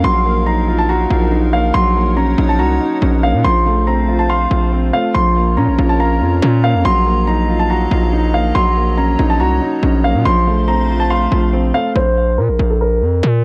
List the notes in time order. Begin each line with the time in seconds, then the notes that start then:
Already playing: A#4 F5
0.04 A#1 F#3 D#4 C6
0.25 A#3
0.46 D#4 A#5
0.68 F4
0.78 A5
0.89 F#4 A#5
1.10 A#1 F4
1.32 D#4
1.53 A#3 F5
1.74 A#1 F#3 D#4 C#5 F#5 C6
1.96 A#3
2.17 C#4 A#5
2.38 A#1 D#4
2.49 A5
2.59 C2 F#4 A#5
2.81 D#4
3.02 A#1 C#4
3.23 A#3 F5
3.34 A#2
3.44 A#1 F3 A3 F4 C5 F5 C6
3.66 A3
3.87 C4 A#5
4.08 F4
4.19 A5
4.29 F5 C6
4.51 A#1 F4
4.72 C4
4.93 A3 F5
5.14 A#1 F3 A#4 C#5 A#5 C6
5.36 A#3
5.57 A#2 C#4 A#5
5.68 A#1
5.78 A#1 F4
5.89 A5
6.00 F5 A#5
6.21 F2 F4
6.42 A#2 C#4
6.64 A#3 F5
6.74 F2
6.85 A#1 F#3 D#5 F5 C6
7.06 A#3
7.27 D#4 A#5
7.49 F4
7.59 A5
7.70 F#4 A#5
7.91 A#1 F4
8.13 D#4
8.34 A#3 F5
8.55 A#1 F#3 C#5 C6
8.76 A#3
8.98 C#4 A#5
9.19 A#1 D#4
9.30 A5
9.40 C2 F#4 A#5
9.62 D#4
9.83 A#1 C#4
10.04 A#3 F5
10.15 A#2
10.25 A#1 F3 A3 C5 F5 C6
10.46 A3
10.68 C4 A#5
10.89 F4
11.00 A5
11.10 F5 C6
11.31 A#1 F4
11.53 C4
11.74 A3 F5
11.95 A#1 C5
12.38 A#2 A#4
12.49 A#1
12.59 A#1
12.70 A4
12.81 A#4
13.02 F2
13.23 A#2